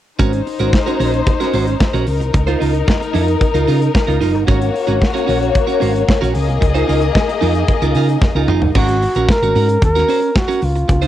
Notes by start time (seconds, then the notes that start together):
0.19 G#1 C#4 D#4 F#4 A#4 C5, kick, closed hi-hat
0.33 muted clean electric guitar stroke, closed hi-hat
0.47 muted clean electric guitar stroke, open hi-hat
0.59 G#1 C#4 F#4 A#4, closed hi-hat
0.73 muted clean electric guitar stroke, kick, snare
0.86 C#4 F#4 A#4, closed hi-hat
1.00 A#1 C#4 F#4 A#4, open hi-hat
1.14 muted clean electric guitar stroke, closed hi-hat
1.27 muted clean electric guitar stroke, kick, closed hi-hat
1.40 C#4 F#4 A#4, snare, closed hi-hat
1.53 G#1 C#4 F#4 C5, open hi-hat
1.67 muted clean electric guitar stroke, closed hi-hat
1.80 muted clean electric guitar stroke, kick, snare
1.93 A#1 C#4 F#4 A#4, closed hi-hat
2.06 C#2 D#4 A#4, muted clean electric guitar stroke, open hi-hat
2.20 C2, muted clean electric guitar stroke, closed hi-hat
2.34 C#2, muted clean electric guitar stroke, kick, closed hi-hat
2.47 D#4 F4 C5, closed hi-hat
2.60 C#2 D#4 F4 A#4, open hi-hat
2.74 muted clean electric guitar stroke, closed hi-hat
2.87 muted clean electric guitar stroke, kick, snare
3.00 muted clean electric guitar stroke, closed hi-hat
3.14 F2 D#4 F4 A#4, open hi-hat
3.28 muted clean electric guitar stroke, closed hi-hat
3.41 muted clean electric guitar stroke, kick, closed hi-hat
3.54 C#2 D#4 F4 A#4, closed hi-hat
3.68 C#3 D#4 F4 A#4, open hi-hat
3.81 muted clean electric guitar stroke, closed hi-hat
3.94 muted clean electric guitar stroke, kick, snare
4.07 C#2 D#4 F4 A#4, closed hi-hat
4.21 F#1 D#4 F4 A#4, open hi-hat
4.34 G1, muted clean electric guitar stroke, closed hi-hat
4.47 G#1 A#3 C#4 F#4 A#4 C#5, kick, closed hi-hat
4.60 muted clean electric guitar stroke, closed hi-hat
4.74 muted clean electric guitar stroke, open hi-hat
4.87 G#1 C#4 F#4 A#4, closed hi-hat
5.01 muted clean electric guitar stroke, kick, snare
5.14 C#4 F#4 A#4, closed hi-hat
5.27 A#1 C#4 F#4 A#4, open hi-hat
5.40 muted clean electric guitar stroke, closed hi-hat
5.53 muted clean electric guitar stroke, kick, closed hi-hat
5.67 C#4 F#4 A#4, closed hi-hat
5.80 G#1 C#4 F#4 C5, open hi-hat
5.94 muted clean electric guitar stroke, closed hi-hat
6.08 muted clean electric guitar stroke, kick, snare
6.21 A#1 C#4 F#4 A#4, closed hi-hat
6.34 C#2 A#3 G#4 D#5, muted clean electric guitar stroke, open hi-hat
6.48 C2, muted clean electric guitar stroke, closed hi-hat
6.61 C#2, muted clean electric guitar stroke, kick, closed hi-hat
6.75 D#4 F4 C5, closed hi-hat
6.88 C#2 D#4 F4 A#4, open hi-hat
7.01 muted clean electric guitar stroke, closed hi-hat
7.15 muted clean electric guitar stroke, kick, snare
7.29 muted clean electric guitar stroke, closed hi-hat
7.41 F2 D#4 F4 A#4, open hi-hat
7.55 muted clean electric guitar stroke, closed hi-hat
7.68 muted clean electric guitar stroke, kick, closed hi-hat
7.82 C#2 D#4 F4 A#4, closed hi-hat
7.95 C#3 D#4 F4 A#4, open hi-hat
8.09 muted clean electric guitar stroke, closed hi-hat
8.22 muted clean electric guitar stroke, kick, snare
8.35 C#2 D#4 F4 A#4
8.48 F#1 D#4 F4 A#4, mid tom
8.62 G1, muted clean electric guitar stroke, floor tom
8.75 G#1 C#4 F#4 A#4, kick, crash
8.88 muted clean electric guitar stroke, closed hi-hat
9.02 muted clean electric guitar stroke, open hi-hat
9.15 A#1 C#4 F#4 A#4, closed hi-hat
9.29 A#4, muted clean electric guitar stroke, kick, snare
9.42 G#1 C#4 F#4 A#4, closed hi-hat
9.55 G#2 C#4 F#4 A#4, open hi-hat
9.69 muted clean electric guitar stroke, closed hi-hat
9.82 D#2 A#4, muted clean electric guitar stroke, kick, closed hi-hat
9.95 C#4 F#4 A#4, snare, closed hi-hat
10.08 C#4 F#4 C5, open hi-hat
10.22 muted clean electric guitar stroke, closed hi-hat
10.35 F#4, muted clean electric guitar stroke, kick, snare
10.48 C#4 F#4 A#4, closed hi-hat
10.62 C#2 F4, muted clean electric guitar stroke, open hi-hat
10.76 muted clean electric guitar stroke, closed hi-hat
10.88 C#2, muted clean electric guitar stroke, kick, closed hi-hat
11.02 D#4 F4 C5, closed hi-hat